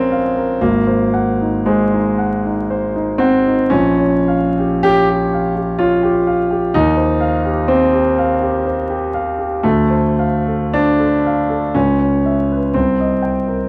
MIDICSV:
0, 0, Header, 1, 2, 480
1, 0, Start_track
1, 0, Tempo, 1025641
1, 282, Time_signature, 3, 2, 24, 8
1, 1726, Tempo, 1125704
1, 2206, Tempo, 963082
1, 4606, Tempo, 1107011
1, 5086, Tempo, 991736
1, 6515, End_track
2, 0, Start_track
2, 0, Title_t, "Grand piano"
2, 0, Program_c, 0, 0
2, 0, Control_c, 0, 64, 127
2, 0, Note_on_c, 0, 34, 55
2, 0, Note_on_c, 0, 60, 99
2, 0, Note_on_c, 0, 61, 94
2, 0, Note_on_c, 0, 70, 50
2, 0, Note_on_c, 0, 73, 49
2, 0, Note_on_c, 0, 77, 48
2, 55, Note_off_c, 0, 77, 0
2, 55, Note_on_c, 0, 77, 50
2, 121, Note_off_c, 0, 70, 0
2, 169, Note_on_c, 0, 70, 47
2, 240, Note_off_c, 0, 77, 0
2, 266, Note_off_c, 0, 34, 0
2, 280, Note_off_c, 0, 60, 0
2, 286, Note_off_c, 0, 70, 0
2, 287, Note_on_c, 0, 32, 61
2, 287, Note_on_c, 0, 58, 90
2, 290, Control_c, 0, 64, 0
2, 292, Note_off_c, 0, 61, 0
2, 293, Note_off_c, 0, 73, 0
2, 366, Control_c, 0, 64, 127
2, 408, Note_on_c, 0, 72, 51
2, 531, Note_on_c, 0, 78, 52
2, 600, Note_off_c, 0, 72, 0
2, 659, Note_on_c, 0, 63, 45
2, 723, Note_off_c, 0, 78, 0
2, 771, Note_off_c, 0, 58, 0
2, 776, Note_on_c, 0, 56, 82
2, 780, Note_on_c, 0, 72, 54
2, 849, Note_off_c, 0, 63, 0
2, 902, Note_on_c, 0, 63, 43
2, 970, Note_off_c, 0, 72, 0
2, 1021, Note_on_c, 0, 78, 49
2, 1091, Note_off_c, 0, 63, 0
2, 1146, Note_on_c, 0, 63, 43
2, 1209, Note_off_c, 0, 78, 0
2, 1256, Note_off_c, 0, 56, 0
2, 1265, Note_on_c, 0, 72, 53
2, 1330, Note_off_c, 0, 63, 0
2, 1382, Note_on_c, 0, 63, 49
2, 1447, Note_off_c, 0, 72, 0
2, 1490, Note_on_c, 0, 60, 96
2, 1495, Note_on_c, 0, 78, 56
2, 1564, Note_off_c, 0, 63, 0
2, 1622, Note_on_c, 0, 63, 46
2, 1681, Note_off_c, 0, 78, 0
2, 1710, Note_off_c, 0, 32, 0
2, 1727, Note_off_c, 0, 60, 0
2, 1731, Note_on_c, 0, 61, 93
2, 1733, Control_c, 0, 64, 0
2, 1734, Note_off_c, 0, 63, 0
2, 1736, Note_on_c, 0, 34, 66
2, 1821, Control_c, 0, 64, 127
2, 1857, Note_on_c, 0, 73, 51
2, 1978, Note_on_c, 0, 77, 52
2, 2049, Note_off_c, 0, 73, 0
2, 2109, Note_on_c, 0, 67, 45
2, 2167, Note_off_c, 0, 77, 0
2, 2207, Note_off_c, 0, 67, 0
2, 2209, Note_off_c, 0, 61, 0
2, 2214, Note_on_c, 0, 67, 108
2, 2216, Note_on_c, 0, 73, 52
2, 2339, Note_off_c, 0, 67, 0
2, 2413, Note_off_c, 0, 73, 0
2, 2466, Note_on_c, 0, 77, 46
2, 2577, Note_on_c, 0, 67, 50
2, 2649, Note_off_c, 0, 77, 0
2, 2690, Note_on_c, 0, 65, 98
2, 2694, Note_on_c, 0, 73, 54
2, 2764, Note_off_c, 0, 67, 0
2, 2811, Note_on_c, 0, 67, 55
2, 2881, Note_off_c, 0, 73, 0
2, 2932, Note_on_c, 0, 77, 53
2, 2999, Note_off_c, 0, 67, 0
2, 3049, Note_on_c, 0, 67, 54
2, 3118, Note_off_c, 0, 77, 0
2, 3149, Note_off_c, 0, 34, 0
2, 3162, Note_off_c, 0, 65, 0
2, 3165, Note_off_c, 0, 67, 0
2, 3167, Note_on_c, 0, 63, 102
2, 3170, Control_c, 0, 64, 0
2, 3172, Note_on_c, 0, 39, 71
2, 3242, Control_c, 0, 64, 127
2, 3280, Note_on_c, 0, 72, 51
2, 3398, Note_on_c, 0, 77, 58
2, 3472, Note_off_c, 0, 72, 0
2, 3519, Note_on_c, 0, 67, 48
2, 3591, Note_off_c, 0, 77, 0
2, 3635, Note_on_c, 0, 60, 90
2, 3636, Note_on_c, 0, 72, 48
2, 3642, Note_off_c, 0, 63, 0
2, 3712, Note_off_c, 0, 67, 0
2, 3758, Note_on_c, 0, 67, 44
2, 3830, Note_off_c, 0, 72, 0
2, 3885, Note_on_c, 0, 77, 58
2, 3951, Note_off_c, 0, 67, 0
2, 4001, Note_on_c, 0, 67, 49
2, 4074, Note_off_c, 0, 77, 0
2, 4117, Note_off_c, 0, 60, 0
2, 4122, Note_on_c, 0, 72, 49
2, 4192, Note_off_c, 0, 67, 0
2, 4243, Note_on_c, 0, 67, 53
2, 4313, Note_off_c, 0, 72, 0
2, 4363, Note_on_c, 0, 77, 56
2, 4434, Note_off_c, 0, 67, 0
2, 4486, Note_on_c, 0, 67, 50
2, 4558, Note_off_c, 0, 77, 0
2, 4591, Note_off_c, 0, 39, 0
2, 4607, Note_on_c, 0, 57, 93
2, 4609, Note_off_c, 0, 67, 0
2, 4610, Note_on_c, 0, 38, 64
2, 4614, Control_c, 0, 64, 0
2, 4685, Control_c, 0, 64, 127
2, 4724, Note_on_c, 0, 72, 52
2, 4849, Note_on_c, 0, 77, 52
2, 4921, Note_off_c, 0, 72, 0
2, 4975, Note_on_c, 0, 69, 42
2, 5043, Note_off_c, 0, 77, 0
2, 5086, Note_on_c, 0, 62, 97
2, 5088, Note_off_c, 0, 57, 0
2, 5090, Note_on_c, 0, 72, 50
2, 5168, Note_off_c, 0, 69, 0
2, 5211, Note_on_c, 0, 69, 48
2, 5289, Note_off_c, 0, 72, 0
2, 5340, Note_on_c, 0, 77, 52
2, 5404, Note_off_c, 0, 69, 0
2, 5455, Note_on_c, 0, 69, 48
2, 5527, Note_off_c, 0, 77, 0
2, 5555, Note_off_c, 0, 38, 0
2, 5571, Note_off_c, 0, 62, 0
2, 5574, Note_off_c, 0, 69, 0
2, 5575, Note_on_c, 0, 61, 83
2, 5578, Note_on_c, 0, 37, 60
2, 5580, Control_c, 0, 64, 0
2, 5665, Control_c, 0, 64, 127
2, 5696, Note_on_c, 0, 73, 51
2, 5822, Note_on_c, 0, 76, 49
2, 5890, Note_off_c, 0, 73, 0
2, 5949, Note_on_c, 0, 71, 42
2, 6012, Note_off_c, 0, 76, 0
2, 6045, Note_off_c, 0, 37, 0
2, 6057, Note_on_c, 0, 60, 80
2, 6058, Note_off_c, 0, 61, 0
2, 6063, Note_off_c, 0, 71, 0
2, 6065, Control_c, 0, 64, 0
2, 6066, Note_on_c, 0, 36, 51
2, 6147, Control_c, 0, 64, 127
2, 6181, Note_on_c, 0, 75, 46
2, 6290, Note_on_c, 0, 79, 44
2, 6366, Note_off_c, 0, 75, 0
2, 6409, Note_on_c, 0, 70, 40
2, 6479, Note_off_c, 0, 79, 0
2, 6515, Note_off_c, 0, 36, 0
2, 6515, Note_off_c, 0, 60, 0
2, 6515, Note_off_c, 0, 70, 0
2, 6515, End_track
0, 0, End_of_file